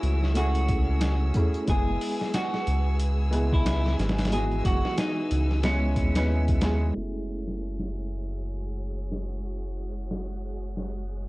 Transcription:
0.00 1.32 C#2 medium
0.00 1.69 E3 medium
0.00 6.94 G#3 medium
0.00 0.34 A3 medium
0.00 0.36 C#4 medium
0.00 0.31 E4 medium
0.00 0.33 E4 medium
0.00 0.34 F#4 medium
0.00 1.64 F#4 medium
0.00 0.39 G#4 medium
0.00 6.94 G#4 medium
0.00 1.63 C#5 medium
0.00 1.63 E6 medium
0.00 closed hi-hat medium
0.23 snare soft
0.34 1.31 A3 medium
0.34 1.31 C#4 medium
0.34 1.32 E4 medium
0.34 1.58 F#4 medium
0.34 closed hi-hat medium
0.39 1.33 G#4 loud
0.55 closed hi-hat soft
0.68 kick medium
0.68 closed hi-hat medium
1.01 snare loud
1.01 closed hi-hat medium
1.34 1.64 A3 medium
1.34 1.65 C#4 medium
1.34 1.65 E4 medium
1.34 1.66 G#4 medium
1.34 kick loud
1.34 closed hi-hat medium
1.54 closed hi-hat soft
1.67 1.97 F#1 loud
1.67 3.29 G#3 medium
1.67 3.30 B3 medium
1.67 3.30 E4 medium
1.67 6.91 G#4 medium
1.67 2.29 G#4 loud
1.67 6.92 B4 medium
1.67 6.91 G#5 medium
1.67 6.92 E6 medium
1.67 kick loud
1.67 closed hi-hat medium
1.71 3.31 G#4 medium
2.01 open hi-hat medium
2.21 snare soft
2.34 2.95 F#4 medium
2.34 snare loud
2.34 closed hi-hat medium
2.54 snare soft
2.67 3.96 C#2 medium
2.67 closed hi-hat medium
3.00 closed hi-hat medium
3.31 4.27 G#3 medium
3.31 4.28 B3 medium
3.31 4.29 E4 medium
3.31 closed hi-hat medium
3.35 4.30 G#4 medium
3.53 3.95 E4 medium
3.53 kick loud
3.66 snare loud
3.66 closed hi-hat medium
3.86 snare medium
3.99 4.62 G#1 loud
3.99 snare medium
3.99 closed hi-hat medium
4.09 snare medium
4.09 closed hi-hat medium
4.18 snare medium
4.18 closed hi-hat medium
4.25 snare loud
4.25 closed hi-hat medium
4.30 5.61 E3 medium
4.30 5.59 G#3 medium
4.30 5.60 B3 medium
4.30 4.62 G#4 medium
4.30 closed hi-hat medium
4.35 5.62 F#4 medium
4.51 closed hi-hat soft
4.65 4.82 F#1 medium
4.65 4.95 F#4 medium
4.65 kick medium
4.65 closed hi-hat medium
4.85 snare medium
4.98 5.59 D#4 medium
4.98 snare loud
4.98 closed hi-hat medium
5.31 5.98 C#2 medium
5.31 closed hi-hat medium
5.51 snare soft
5.63 6.12 G#3 loud
5.63 6.12 B3 medium
5.63 6.85 C#4 medium
5.63 6.13 E4 medium
5.63 6.13 G#4 loud
5.63 snare loud
5.63 closed hi-hat medium
5.96 6.93 D#2 loud
5.96 kick medium
5.96 closed hi-hat medium
6.16 6.59 G#3 medium
6.16 6.59 B3 medium
6.16 6.60 E4 medium
6.16 6.60 B4 medium
6.16 snare loud
6.16 closed hi-hat medium
6.48 kick medium
6.48 closed hi-hat medium
6.62 6.92 G#3 medium
6.62 6.92 B3 medium
6.62 6.93 E4 medium
6.62 6.93 G#4 loud
6.62 snare loud
6.62 closed hi-hat medium
6.94 11.29 F#1 medium
6.94 11.29 G#3 medium
6.94 11.29 A3 medium
6.94 11.29 C#4 medium
6.94 11.29 E4 medium
6.94 11.29 F#4 medium
6.94 11.29 G#4 medium
6.94 11.29 C#5 medium
6.94 9.57 E6 medium
6.94 closed hi-hat medium
6.98 11.29 G#4 medium
7.27 open hi-hat medium
7.47 snare soft
7.60 closed hi-hat medium
7.79 snare soft
7.93 closed hi-hat medium
8.26 closed hi-hat medium
8.59 closed hi-hat medium
8.92 closed hi-hat medium
9.12 snare soft
9.25 closed hi-hat medium
9.58 11.29 F#6 medium
9.58 closed hi-hat medium
9.77 closed hi-hat soft
9.91 closed hi-hat medium
10.11 snare soft
10.24 closed hi-hat medium
10.57 closed hi-hat medium
10.77 snare soft
10.90 closed hi-hat medium
11.10 closed hi-hat soft
11.23 closed hi-hat medium

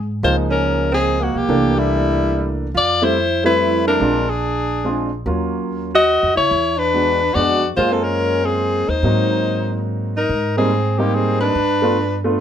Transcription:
0.00 0.21 G#2 medium
0.23 1.30 C#2 medium
0.23 1.40 F3 medium
0.23 1.40 G#3 medium
0.23 1.41 A#3 medium
0.23 1.41 D#4 medium
0.23 0.36 F4 medium
0.23 0.37 C5 medium
0.50 0.89 C#4 medium
0.50 0.90 A#4 medium
0.92 1.21 C4 medium
0.92 1.25 G#4 medium
1.20 1.32 A#3 medium
1.20 1.39 F#4 medium
1.32 1.48 B1 medium
1.32 1.78 A#3 medium
1.37 1.80 G4 medium
1.49 2.71 C2 medium
1.49 2.66 E3 medium
1.49 2.66 A3 medium
1.49 2.66 A#3 medium
1.49 2.66 D4 medium
1.76 2.60 G3 medium
1.76 2.61 E4 medium
2.75 3.96 F2 medium
2.75 3.04 F4 medium
2.75 3.06 D5 loud
3.02 3.15 G3 medium
3.02 3.15 A3 medium
3.02 3.15 C4 medium
3.02 3.44 E4 medium
3.02 3.16 E4 medium
3.02 3.45 C5 loud
3.44 3.97 G3 medium
3.44 3.98 A3 medium
3.44 3.98 C4 medium
3.44 3.98 E4 medium
3.44 3.84 E4 medium
3.44 3.84 B4 loud
3.87 4.30 D4 medium
3.87 4.31 A#4 medium
4.00 5.22 A#1 medium
4.00 4.25 G#3 medium
4.00 4.25 C4 medium
4.00 4.25 D4 medium
4.00 4.26 F4 medium
4.30 5.13 D4 medium
4.30 5.12 G#4 medium
4.84 5.09 G#3 medium
4.84 5.09 C4 medium
4.84 5.09 D4 soft
4.84 5.09 F4 medium
5.26 6.20 D#2 medium
5.26 5.89 F#3 medium
5.26 5.90 A#3 soft
5.26 5.90 C#4 medium
5.26 5.90 F4 medium
5.94 6.34 F#4 medium
5.94 6.34 D#5 loud
6.23 6.36 F2 medium
6.35 6.50 C#2 medium
6.35 6.79 E4 medium
6.35 6.80 C#5 medium
6.51 7.31 E2 medium
6.77 7.35 D4 medium
6.77 7.36 B4 loud
6.94 7.18 G#3 soft
6.94 7.18 B3 soft
6.94 7.18 D4 soft
6.94 7.19 F#4 medium
7.34 7.74 F2 medium
7.34 7.60 G#3 medium
7.34 7.60 B3 medium
7.34 7.61 D4 medium
7.34 7.69 F#4 medium
7.34 7.61 F#4 medium
7.34 7.70 D5 medium
7.76 8.84 F#2 medium
7.76 8.95 G#3 medium
7.76 8.95 A#3 medium
7.76 7.93 F4 medium
7.76 8.95 F4 medium
7.76 7.94 C5 medium
7.76 8.95 C5 medium
7.92 8.04 C4 medium
7.92 8.06 A4 medium
8.03 8.45 C#4 medium
8.03 8.47 A#4 medium
8.44 8.89 C4 medium
8.44 8.91 G#4 medium
8.88 9.02 D#2 medium
8.88 9.86 D#4 medium
8.88 9.87 C5 medium
9.03 10.25 G#2 medium
9.03 10.21 F#3 medium
9.03 10.21 A#3 medium
9.03 10.21 C4 medium
9.03 10.21 D#4 medium
10.17 10.55 D#4 medium
10.17 10.55 A#4 medium
10.29 11.51 G#2 medium
10.57 10.70 G3 medium
10.57 10.70 A#3 medium
10.57 11.01 C4 medium
10.57 10.70 C4 medium
10.57 10.70 D#4 medium
10.57 11.00 G#4 medium
10.98 11.52 G3 medium
10.98 11.52 A#3 medium
10.98 11.16 A#3 medium
10.98 11.52 C4 medium
10.98 11.53 D#4 medium
10.98 11.16 G4 medium
11.15 11.41 C4 medium
11.15 11.40 G#4 medium
11.41 12.21 D4 medium
11.41 12.20 B4 medium
11.55 12.35 G2 medium
11.82 11.95 A3 medium
11.82 11.96 B3 medium
11.82 11.96 D4 medium
11.82 11.96 F4 medium
12.24 12.40 A3 medium
12.24 12.40 B3 medium
12.24 12.40 D4 medium
12.24 12.40 F4 medium

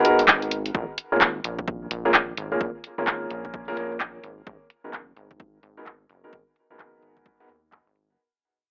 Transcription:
0.05 0.19 B3 medium
0.05 0.19 D#4 medium
0.05 0.19 F#4 medium
0.05 0.19 G#4 medium
0.05 0.19 A#4 medium
0.05 closed hi-hat medium
0.19 0.71 G#1 loud
0.19 closed hi-hat medium
0.28 kick loud
0.28 clap loud
0.42 closed hi-hat soft
0.51 closed hi-hat medium
0.66 closed hi-hat medium
0.75 0.85 A#1 medium
0.75 kick loud
0.98 closed hi-hat medium
1.12 1.41 G#1 medium
1.12 1.22 A#3 medium
1.12 1.22 C#4 medium
1.12 1.21 F4 medium
1.12 1.22 G#4 medium
1.12 1.22 A#4 medium
1.21 kick loud
1.21 clap loud
1.44 1.87 A#1 medium
1.44 closed hi-hat medium
1.59 kick medium
1.68 kick loud
1.91 2.34 A#1 medium
1.91 closed hi-hat medium
2.05 2.15 A#3 medium
2.05 2.15 C#4 medium
2.05 2.15 F4 medium
2.05 2.15 G#4 medium
2.05 2.15 A#4 medium
2.14 kick loud
2.14 clap loud
2.37 2.56 G#1 loud
2.37 closed hi-hat medium
2.52 2.61 A#3 medium
2.52 2.61 C#4 medium
2.52 2.61 F4 medium
2.52 2.61 G#4 medium
2.52 2.61 A#4 medium
2.61 2.71 A#1 loud
2.61 kick loud
2.84 closed hi-hat medium
2.98 3.27 G#1 medium
2.98 3.64 A#3 medium
2.98 3.65 C#4 medium
2.98 3.65 F4 medium
2.98 3.65 G#4 medium
2.98 3.65 A#4 medium
3.07 kick loud
3.07 clap loud
3.30 3.73 A#1 medium
3.30 closed hi-hat medium
3.45 kick medium
3.54 kick loud
3.68 3.75 A#3 medium
3.68 3.75 C#4 medium
3.68 3.75 F4 medium
3.68 3.75 G#4 medium
3.68 3.75 A#4 loud
3.77 4.20 A#1 medium
3.77 3.91 A#3 medium
3.77 3.91 C#4 medium
3.77 3.91 F4 medium
3.77 3.91 G#4 medium
3.77 3.91 A#4 medium
3.77 closed hi-hat loud
4.00 kick loud
4.00 clap loud
4.24 4.42 G#1 loud
4.24 closed hi-hat medium
4.47 4.57 G#1 medium
4.47 kick loud
4.70 closed hi-hat medium
4.84 5.13 F#1 medium
4.84 4.94 B3 medium
4.84 4.94 D#4 medium
4.84 4.94 F#4 medium
4.84 4.94 G#4 medium
4.84 4.94 A#4 medium
4.93 kick loud
4.93 clap loud
5.16 5.59 G#1 medium
5.16 closed hi-hat medium
5.31 kick medium
5.40 kick loud
5.63 6.06 G#1 loud
5.63 closed hi-hat loud
5.77 5.87 B3 medium
5.77 5.87 D#4 medium
5.77 5.87 F#4 medium
5.77 5.87 G#4 medium
5.77 5.87 A#4 medium
5.86 kick loud
5.86 clap loud
6.09 6.28 F#1 loud
6.09 closed hi-hat medium
6.24 6.33 B3 medium
6.24 6.33 D#4 medium
6.24 6.33 F#4 medium
6.24 6.33 G#4 medium
6.24 6.33 A#4 medium
6.33 6.43 G#1 medium
6.33 kick loud
6.56 closed hi-hat medium
6.70 6.99 F#1 medium
6.70 7.37 B3 medium
6.70 7.37 D#4 medium
6.70 7.37 F#4 medium
6.70 7.37 G#4 medium
6.70 7.37 A#4 medium
6.79 kick loud
6.79 clap loud
7.02 7.45 G#1 medium
7.02 closed hi-hat medium
7.17 kick medium
7.26 kick loud
7.40 7.47 B3 medium
7.40 7.47 D#4 medium
7.40 7.47 F#4 medium
7.40 7.47 G#4 medium
7.40 7.47 A#4 medium
7.49 7.81 D#2 medium
7.49 closed hi-hat loud
7.72 kick loud
7.72 clap loud
7.87 8.11 G#1 medium
7.96 closed hi-hat medium
8.10 8.16 F#1 medium

